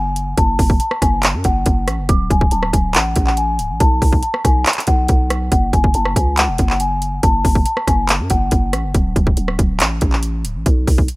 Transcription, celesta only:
0, 0, Header, 1, 2, 480
1, 0, Start_track
1, 0, Key_signature, 3, "minor"
1, 0, Tempo, 428571
1, 420, Time_signature, 4, 2, 24, 8
1, 12503, End_track
2, 0, Start_track
2, 0, Title_t, "Celesta"
2, 0, Program_c, 0, 8
2, 0, Note_on_c, 0, 80, 76
2, 391, Note_off_c, 0, 80, 0
2, 422, Note_on_c, 0, 81, 106
2, 872, Note_off_c, 0, 81, 0
2, 897, Note_on_c, 0, 81, 75
2, 1091, Note_off_c, 0, 81, 0
2, 1138, Note_on_c, 0, 80, 82
2, 1331, Note_off_c, 0, 80, 0
2, 1622, Note_on_c, 0, 78, 85
2, 2298, Note_off_c, 0, 78, 0
2, 2340, Note_on_c, 0, 86, 92
2, 2533, Note_off_c, 0, 86, 0
2, 2583, Note_on_c, 0, 80, 83
2, 2774, Note_off_c, 0, 80, 0
2, 2817, Note_on_c, 0, 81, 86
2, 3011, Note_off_c, 0, 81, 0
2, 3061, Note_on_c, 0, 80, 65
2, 3253, Note_off_c, 0, 80, 0
2, 3300, Note_on_c, 0, 78, 79
2, 3638, Note_off_c, 0, 78, 0
2, 3657, Note_on_c, 0, 78, 78
2, 3754, Note_off_c, 0, 78, 0
2, 3782, Note_on_c, 0, 80, 76
2, 4232, Note_off_c, 0, 80, 0
2, 4259, Note_on_c, 0, 81, 108
2, 4711, Note_off_c, 0, 81, 0
2, 4739, Note_on_c, 0, 81, 82
2, 4932, Note_off_c, 0, 81, 0
2, 4979, Note_on_c, 0, 80, 78
2, 5171, Note_off_c, 0, 80, 0
2, 5461, Note_on_c, 0, 78, 89
2, 6137, Note_off_c, 0, 78, 0
2, 6178, Note_on_c, 0, 78, 92
2, 6371, Note_off_c, 0, 78, 0
2, 6422, Note_on_c, 0, 80, 77
2, 6613, Note_off_c, 0, 80, 0
2, 6663, Note_on_c, 0, 81, 84
2, 6854, Note_off_c, 0, 81, 0
2, 6902, Note_on_c, 0, 80, 68
2, 7094, Note_off_c, 0, 80, 0
2, 7142, Note_on_c, 0, 78, 78
2, 7480, Note_off_c, 0, 78, 0
2, 7507, Note_on_c, 0, 78, 75
2, 7601, Note_off_c, 0, 78, 0
2, 7622, Note_on_c, 0, 80, 77
2, 8072, Note_off_c, 0, 80, 0
2, 8102, Note_on_c, 0, 81, 106
2, 8552, Note_off_c, 0, 81, 0
2, 8578, Note_on_c, 0, 81, 75
2, 8771, Note_off_c, 0, 81, 0
2, 8817, Note_on_c, 0, 80, 81
2, 9010, Note_off_c, 0, 80, 0
2, 9300, Note_on_c, 0, 78, 87
2, 9977, Note_off_c, 0, 78, 0
2, 12503, End_track
0, 0, End_of_file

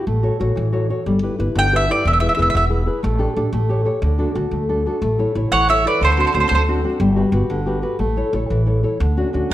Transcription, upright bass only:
0, 0, Header, 1, 2, 480
1, 0, Start_track
1, 0, Key_signature, 2, "major"
1, 0, Tempo, 331309
1, 90, Time_signature, 6, 3, 24, 8
1, 13814, End_track
2, 0, Start_track
2, 0, Title_t, "Upright bass"
2, 0, Program_c, 0, 32
2, 99, Note_on_c, 0, 33, 83
2, 408, Note_off_c, 0, 33, 0
2, 587, Note_on_c, 0, 33, 82
2, 737, Note_off_c, 0, 33, 0
2, 827, Note_on_c, 0, 33, 81
2, 1292, Note_off_c, 0, 33, 0
2, 1539, Note_on_c, 0, 31, 82
2, 1852, Note_off_c, 0, 31, 0
2, 2024, Note_on_c, 0, 31, 87
2, 2176, Note_off_c, 0, 31, 0
2, 2252, Note_on_c, 0, 31, 86
2, 2717, Note_off_c, 0, 31, 0
2, 2974, Note_on_c, 0, 28, 88
2, 3282, Note_off_c, 0, 28, 0
2, 3462, Note_on_c, 0, 28, 88
2, 3610, Note_off_c, 0, 28, 0
2, 3692, Note_on_c, 0, 28, 90
2, 4153, Note_off_c, 0, 28, 0
2, 4403, Note_on_c, 0, 33, 95
2, 4712, Note_off_c, 0, 33, 0
2, 4875, Note_on_c, 0, 33, 81
2, 5030, Note_off_c, 0, 33, 0
2, 5108, Note_on_c, 0, 33, 87
2, 5576, Note_off_c, 0, 33, 0
2, 5823, Note_on_c, 0, 38, 92
2, 6140, Note_off_c, 0, 38, 0
2, 6308, Note_on_c, 0, 38, 78
2, 6467, Note_off_c, 0, 38, 0
2, 6540, Note_on_c, 0, 38, 75
2, 7017, Note_off_c, 0, 38, 0
2, 7268, Note_on_c, 0, 33, 84
2, 7586, Note_off_c, 0, 33, 0
2, 7755, Note_on_c, 0, 33, 81
2, 7914, Note_off_c, 0, 33, 0
2, 7989, Note_on_c, 0, 33, 78
2, 8460, Note_off_c, 0, 33, 0
2, 8710, Note_on_c, 0, 38, 82
2, 9023, Note_off_c, 0, 38, 0
2, 9194, Note_on_c, 0, 38, 91
2, 9349, Note_off_c, 0, 38, 0
2, 9430, Note_on_c, 0, 38, 74
2, 9894, Note_off_c, 0, 38, 0
2, 10137, Note_on_c, 0, 31, 96
2, 10450, Note_off_c, 0, 31, 0
2, 10606, Note_on_c, 0, 31, 92
2, 10766, Note_off_c, 0, 31, 0
2, 10861, Note_on_c, 0, 31, 76
2, 11330, Note_off_c, 0, 31, 0
2, 11575, Note_on_c, 0, 33, 76
2, 11893, Note_off_c, 0, 33, 0
2, 12068, Note_on_c, 0, 33, 81
2, 12225, Note_off_c, 0, 33, 0
2, 12319, Note_on_c, 0, 33, 76
2, 12790, Note_off_c, 0, 33, 0
2, 13044, Note_on_c, 0, 38, 91
2, 13359, Note_off_c, 0, 38, 0
2, 13535, Note_on_c, 0, 38, 72
2, 13688, Note_off_c, 0, 38, 0
2, 13814, End_track
0, 0, End_of_file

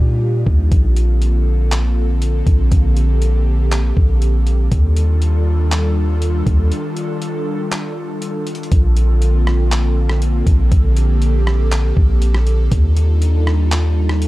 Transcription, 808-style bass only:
0, 0, Header, 1, 2, 480
1, 0, Start_track
1, 0, Key_signature, -2, "major"
1, 0, Tempo, 500000
1, 687, Time_signature, 4, 2, 24, 8
1, 13706, End_track
2, 0, Start_track
2, 0, Title_t, "808-style bass"
2, 0, Program_c, 0, 38
2, 0, Note_on_c, 0, 46, 103
2, 429, Note_off_c, 0, 46, 0
2, 446, Note_on_c, 0, 39, 104
2, 677, Note_off_c, 0, 39, 0
2, 687, Note_on_c, 0, 34, 113
2, 2329, Note_off_c, 0, 34, 0
2, 2367, Note_on_c, 0, 34, 106
2, 2597, Note_off_c, 0, 34, 0
2, 2608, Note_on_c, 0, 34, 112
2, 3769, Note_off_c, 0, 34, 0
2, 3809, Note_on_c, 0, 34, 104
2, 4499, Note_off_c, 0, 34, 0
2, 4528, Note_on_c, 0, 39, 108
2, 6169, Note_off_c, 0, 39, 0
2, 6206, Note_on_c, 0, 39, 113
2, 6447, Note_off_c, 0, 39, 0
2, 8368, Note_on_c, 0, 34, 118
2, 10009, Note_off_c, 0, 34, 0
2, 10047, Note_on_c, 0, 34, 111
2, 10278, Note_off_c, 0, 34, 0
2, 10288, Note_on_c, 0, 34, 112
2, 11449, Note_off_c, 0, 34, 0
2, 11488, Note_on_c, 0, 34, 105
2, 12179, Note_off_c, 0, 34, 0
2, 12208, Note_on_c, 0, 39, 112
2, 13706, Note_off_c, 0, 39, 0
2, 13706, End_track
0, 0, End_of_file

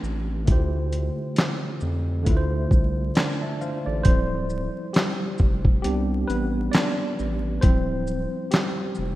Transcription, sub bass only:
0, 0, Header, 1, 2, 480
1, 0, Start_track
1, 0, Tempo, 895522
1, 254, Time_signature, 4, 2, 24, 8
1, 4907, End_track
2, 0, Start_track
2, 0, Title_t, "Sub bass"
2, 0, Program_c, 0, 38
2, 15, Note_on_c, 0, 33, 79
2, 256, Note_on_c, 0, 38, 104
2, 264, Note_off_c, 0, 33, 0
2, 589, Note_off_c, 0, 38, 0
2, 976, Note_on_c, 0, 41, 90
2, 1216, Note_on_c, 0, 38, 98
2, 1224, Note_off_c, 0, 41, 0
2, 1429, Note_off_c, 0, 38, 0
2, 1453, Note_on_c, 0, 36, 83
2, 1667, Note_off_c, 0, 36, 0
2, 2072, Note_on_c, 0, 33, 91
2, 2163, Note_off_c, 0, 33, 0
2, 2175, Note_on_c, 0, 26, 110
2, 2509, Note_off_c, 0, 26, 0
2, 2894, Note_on_c, 0, 29, 96
2, 3108, Note_off_c, 0, 29, 0
2, 3134, Note_on_c, 0, 36, 100
2, 3347, Note_off_c, 0, 36, 0
2, 3372, Note_on_c, 0, 33, 91
2, 3586, Note_off_c, 0, 33, 0
2, 3857, Note_on_c, 0, 33, 82
2, 4069, Note_off_c, 0, 33, 0
2, 4093, Note_on_c, 0, 26, 106
2, 4428, Note_off_c, 0, 26, 0
2, 4814, Note_on_c, 0, 29, 95
2, 4907, Note_off_c, 0, 29, 0
2, 4907, End_track
0, 0, End_of_file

